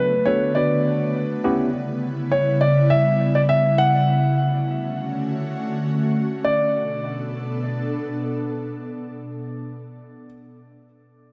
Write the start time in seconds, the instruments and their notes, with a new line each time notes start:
Already playing: ambient pad D3 A3 B3, tine electric piano B3 D4 F#4 A4, grand piano B4
0.25 tine electric piano B3 D4 F#4 A4, grand piano C#5
0.55 tine electric piano B3 D4 F#4 B4, grand piano D5
1.44 ambient pad C#3 G3 E4, tine electric piano B3 C#4 E4 G4
2.31 grand piano C#5
2.61 grand piano D5
2.90 grand piano E5
3.35 grand piano D5
3.49 grand piano E5
3.78 grand piano F#5
4.09 ambient pad D3 A3 C#4 F#4
6.44 ambient pad B2 B3 D4 A4, grand piano D5